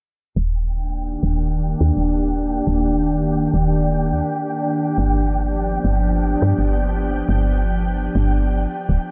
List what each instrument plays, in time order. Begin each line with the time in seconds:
0.36 fm bass D#1, ambient pad D#3, synth texture G5
0.48 ambient pad D4
0.56 ambient pad A#3
0.89 ambient pad G4 D5
1.23 fm bass D#1
1.81 fm bass D#2
1.97 fm bass D#1
2.67 fm bass D#1
3.54 fm bass D#1
4.11 fm bass D#2
4.98 fm bass G1, ambient pad F3
5.21 ambient pad B3
5.84 fm bass G1
6.42 fm bass G2
6.58 fm bass G1
7.29 fm bass G1
8.15 fm bass G1
8.89 fm bass D1